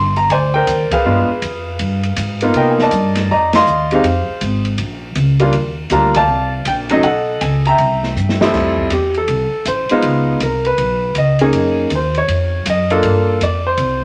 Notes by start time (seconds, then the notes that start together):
Already playing: G1 C6
0.16 A#5, ride
0.30 D2 C5 D5 G#5, kick, ride
0.54 A#4 C5 G5
0.67 D#2, kick, hi-hat pedal, ride
0.91 G#4 B4 F5, muted upright bass stroke, kick, ride
1.05 G2 G#3 B3 D4 F4
1.28 muted upright bass stroke
1.42 F2, kick, hi-hat pedal, ride
1.79 G2, kick, ride
2.03 ride
2.16 G#2, kick, hi-hat pedal, ride
2.41 A#3 B3 D#4 F4, ride
2.54 C3 A#4 D#5 G5, kick, ride
2.71 G#5
2.79 A5, snare
2.83 D5 D#5
2.91 G2, kick, hi-hat pedal, ride
3.15 snare, ride
3.29 F2 D5 D#5 A#5, kick
3.53 D#5 F5 C6, snare, ride
3.67 D#2, hi-hat pedal
3.91 G#3 C4 D#4 G4 C5 F5, ride
3.95 G#4
4.03 F2, kick, ride
4.28 muted upright bass stroke
4.41 G#1, kick, hi-hat pedal, ride
4.65 ride
4.78 A#1, kick, ride
5.15 C#2, kick, hi-hat pedal, ride
5.39 G3 A#3 D4 F4, ride
5.53 D#2, kick, ride
5.90 D2 G3 A#3 D4 F4 A#5, kick, hi-hat pedal, ride
6.14 D5 F5 A5, kick, ride
6.28 C2
6.65 A#1 G5, kick, hi-hat pedal, ride
6.89 F#3 A3 C#4 D#4 D#5, ride
7.03 B1 A4 D#5 F#5, kick, ride
7.41 C#2 G#5, kick, hi-hat pedal, ride
7.65 E5 G5 A#5, ride
7.78 C2, kick, ride
8.03 snare
8.16 G2, hi-hat pedal
8.29 snare
8.41 F2 G3 A3 C4 E4, snare
8.53 F2, kick, snare, crash
8.77 kick
8.90 E2 G4, kick, hi-hat pedal, ride
9.14 A4, ride
9.28 C2, kick, ride
9.65 A1 C5, kick, hi-hat pedal, ride
9.89 G#3 B3 D#4 F4, muted upright bass stroke, ride
10.02 C#2, kick, ride
10.40 C2 A#4, kick, hi-hat pedal, ride
10.65 B4, ride
10.78 B1, kick, ride
11.15 C#2 D#5, kick, hi-hat pedal, ride
11.39 A#3 C#4 D#4 G#4, ride
11.52 F#2, kick, ride
11.90 D#2, kick, hi-hat pedal, ride
11.95 C5
12.15 C#5, ride
12.28 F2, kick, ride
12.65 F#2, kick, hi-hat pedal, ride
12.70 D#5
12.90 A#3 D4 F4 A4, ride
13.03 G2, kick, ride
13.41 F2 D5, kick, hi-hat pedal, ride
13.67 C5
13.77 C2, kick, ride